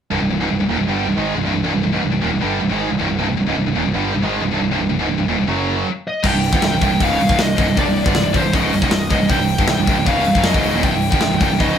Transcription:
0.11 C1 C2 G2
0.21 C1 C2 G2
0.30 C1 C2 G2
0.40 C#1 C#2 G#2
0.50 C1 C2 G2
0.59 C1 C2 G2
0.68 D#1 D#2 A#2
0.78 C1 C2 G2
0.88 G1 G2 D3 G3
1.08 C1 C2 G2
1.17 G#1 G#2 D#3 G#3
1.36 C1 C2 G2
1.45 C1 C2 G2
1.56 C1 C2 G2
1.64 C1 C2 G2
1.74 C1 C2 G2
1.83 C1 C2 G2
1.92 C#1 C#2 G#2
2.02 C1 C2 G2
2.12 C1 C2 G2
2.22 D#1 D#2 A#2
2.31 C1 C2 G2
2.41 G1 G2 D3 G3
2.61 C1 C2 G2
2.69 G#1 G#2 D#3 G#3
2.89 C1 C2 G2
2.99 C1 C2 G2
3.09 C1 C2 G2
3.19 C1 C2 G2
3.27 C1 C2 G2
3.37 C1 C2 G2
3.46 C#1 C#2 G#2
3.56 C1 C2 G2
3.66 C1 C2 G2
3.75 D#1 D#2 A#2
3.85 C1 C2 G2
3.94 G1 G2 D3 G3
4.14 C1 C2 G2
4.23 G#1 G#2 D#3 G#3
4.43 C1 C2 G2
4.51 C1 C2 G2
4.61 C1 C2 G2
4.71 C1 C2 G2
4.80 C1 C2 G2
4.89 C1 C2 G2
4.99 C#1 C#2 G#2
5.09 C1 C2 G2
5.18 C1 C2 G2
5.28 D#1 D#2 A#2
5.38 C1 C2 G2
5.47 F#1 F#2 C#3 F#3
6.08 D#5
6.23 C1 C2 G2 G5, kick, crash
6.33 C1 C2 G2
6.43 open hi-hat
6.53 G1 G2 D3, kick
6.62 C1 C2 G2 G5, snare, open hi-hat
6.72 C1 C2 G2
6.81 C1 C2 G2, kick, open hi-hat
6.91 C1 C2 G2
7.00 C#1 C#2 G#2 C#3 F5, kick, open hi-hat
7.20 C1 C2 G2, open hi-hat
7.29 C1 C2 G2, kick
7.39 C1 C2 G2 D#5, snare, open hi-hat
7.57 C#1 C#2 G#2, kick, open hi-hat
7.67 C1 C2 G2
7.77 C1 C2 G2 D5, kick, open hi-hat
7.86 C1 C2 G2
7.96 open hi-hat
8.04 G1 G2 D3, kick
8.15 C1 C2 G2, snare, open hi-hat
8.23 C1 C2 G2
8.33 C1 C2 G2 C5, kick, open hi-hat
8.43 C1 C2 G2
8.53 C#1 C#2 G#2 C#3 D#5, kick, open hi-hat
8.72 C1 C2 G2, open hi-hat
8.82 C1 C2 G2, kick
8.90 C1 C2 G2, snare, open hi-hat
9.10 C#1 C#2 G#2 D#5, kick, open hi-hat
9.19 C1 C2 G2
9.28 C1 C2 G2 G5, kick, open hi-hat
9.38 C1 C2 G2
9.48 open hi-hat
9.58 G1 G2 D3, kick
9.68 C1 C2 G2 G5, snare, open hi-hat
9.77 C1 C2 G2
9.86 C1 C2 G2, kick, open hi-hat
9.96 C1 C2 G2
10.05 C#1 C#2 G#2 C#3 F5, kick, open hi-hat
10.24 C1 C2 G2, open hi-hat
10.34 F#1 F#2 C#3 F#3, kick
10.44 D#5, snare, open hi-hat
10.54 C#1 C#2 G#2 C#3, kick
10.63 open hi-hat
10.73 D#1 D#2 A#2
10.83 C1 C2 G2 G5, kick, open hi-hat
10.92 C1 C2 G2
11.02 open hi-hat
11.11 G1 G2 D3, kick
11.20 C1 C2 G2, snare, open hi-hat
11.31 C1 C2 G2
11.40 C1 C2 G2 G5, kick, open hi-hat
11.49 C1 C2 G2
11.59 C#1 C#2 G#2 C#3 D#5, kick, open hi-hat

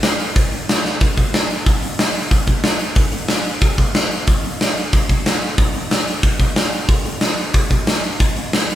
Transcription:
0.03 snare, open hi-hat
0.20 open hi-hat
0.36 kick, open hi-hat
0.53 open hi-hat
0.69 snare, open hi-hat
0.85 snare
1.01 kick, open hi-hat
1.17 kick, open hi-hat
1.34 snare, open hi-hat
1.50 open hi-hat
1.66 kick, open hi-hat
1.83 open hi-hat
1.99 snare, open hi-hat
2.15 open hi-hat
2.31 kick, open hi-hat
2.47 kick, open hi-hat
2.64 snare, open hi-hat
2.79 open hi-hat
2.95 kick, open hi-hat
3.12 open hi-hat
3.28 snare, open hi-hat
3.45 open hi-hat
3.61 kick, open hi-hat
3.78 kick, open hi-hat
3.95 snare, open hi-hat
4.11 open hi-hat
4.27 kick, open hi-hat
4.44 open hi-hat
4.61 snare, open hi-hat
4.77 open hi-hat
4.93 kick, open hi-hat
5.09 kick, open hi-hat
5.26 snare, open hi-hat
5.42 open hi-hat
5.58 kick, open hi-hat
5.75 open hi-hat
5.91 snare, open hi-hat
6.07 open hi-hat
6.23 kick, open hi-hat
6.40 kick, open hi-hat
6.56 snare, open hi-hat
6.72 open hi-hat
6.89 kick, open hi-hat
7.05 open hi-hat
7.21 snare, open hi-hat
7.37 open hi-hat
7.54 kick, open hi-hat
7.70 kick, open hi-hat
7.87 snare, open hi-hat
8.04 open hi-hat
8.20 kick, open hi-hat
8.37 open hi-hat
8.53 snare, open hi-hat
8.70 open hi-hat

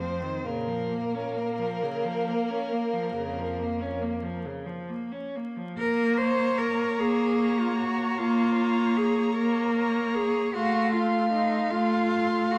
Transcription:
Already playing: F2
0.00 F3 C4 C5
0.22 D#3
0.44 A#2 C#3 A#3 A#4
0.68 F3
0.91 A#3
1.15 C#4
1.37 A#3
1.59 F3
1.83 C#3
2.05 F3
2.28 A#3
2.50 C#4
2.73 A#3
2.94 F3
3.14 F2 C#3
3.39 F3
3.59 A#3
3.81 C#4
4.02 A#3
4.23 F3
4.45 C#3
4.66 F3
4.89 A#3
5.12 C#4
5.36 A#3
5.57 F3
5.78 A#3 A#4
6.17 C5 C#5 A#5
6.58 A#4
6.98 A#3 G#4
7.39 C#5 A#5
7.59 F4
7.78 F#4
8.17 A#3 F4
8.56 C#5 A#5
8.97 G#4
9.35 A#3 A#4
9.77 C#5 A#5
10.14 G#4
10.53 A3 F#4 F5 C6
10.92 F4 F5 C6
11.32 D#4
11.69 A3 F4
12.09 F5 C6
12.51 F#4

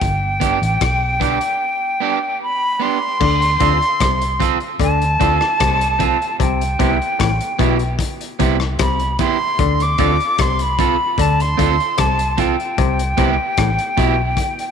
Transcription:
Already playing: G5
0.02 G1, kick, closed hi-hat
0.40 B3 D4 G4, kick, closed hi-hat
0.62 A1, closed hi-hat
0.81 B1, kick, cross-stick, closed hi-hat
1.20 B3 D4 G4, kick, closed hi-hat
1.41 closed hi-hat
2.00 B3 D4 G4
2.42 B5
2.80 B3 D4 G4 C6
3.20 D2 D3, kick, crash
3.42 closed hi-hat
3.60 D2 D3 C4 F4 A4, kick, closed hi-hat
3.82 closed hi-hat
4.00 C2 C3, kick, cross-stick, closed hi-hat
4.21 closed hi-hat
4.40 C4 F4 A4, kick, closed hi-hat
4.60 closed hi-hat
4.80 D2 D3 A5, kick, closed hi-hat
5.02 closed hi-hat
5.20 D2 D3 C4 F4 A4, kick, closed hi-hat
5.41 cross-stick
5.60 C2 C3, kick, cross-stick, closed hi-hat
5.81 closed hi-hat
5.99 C4 F4 A4, kick, closed hi-hat
6.22 closed hi-hat
6.40 C2 C3 G5, kick, closed hi-hat
6.61 closed hi-hat
6.79 C2 C3 B3 E4 G4, kick, closed hi-hat
7.02 closed hi-hat
7.19 A1 A2, kick, cross-stick, closed hi-hat
7.41 closed hi-hat
7.59 B1 B2 B3 E4 G4, kick, closed hi-hat
7.79 closed hi-hat
7.99 kick, closed hi-hat
8.21 closed hi-hat
8.39 C2 C3 B3 E4 G4, kick, closed hi-hat
8.60 cross-stick
8.79 C2 C3 B5, kick, cross-stick, closed hi-hat
8.99 closed hi-hat
9.19 B3 E4 G4 C6, kick, closed hi-hat
9.59 D2 D3, kick, closed hi-hat
9.80 D6, closed hi-hat
9.98 D2 D3 C4 F4 A4, kick, closed hi-hat
10.20 closed hi-hat
10.38 C2 C3 C6, kick, cross-stick, closed hi-hat
10.59 B5, closed hi-hat
10.79 C4 F4 A4, kick, closed hi-hat
11.18 D2 D3 A5, kick, closed hi-hat
11.40 C6, closed hi-hat
11.57 D2 D3 C4 F4 A4, kick, closed hi-hat
11.80 closed hi-hat
11.98 C2 C3 A5, kick, cross-stick, closed hi-hat
12.19 closed hi-hat
12.38 C4 F4 A4 G5, kick, closed hi-hat
12.60 closed hi-hat
12.78 C2 C3, kick, closed hi-hat
12.99 closed hi-hat
13.17 C2 C3 B3 E4 G4, kick, closed hi-hat
13.57 A1 A2, kick, cross-stick, closed hi-hat
13.79 closed hi-hat
13.97 B1 B2 B3 E4 G4, kick, closed hi-hat
14.37 kick, closed hi-hat
14.59 closed hi-hat

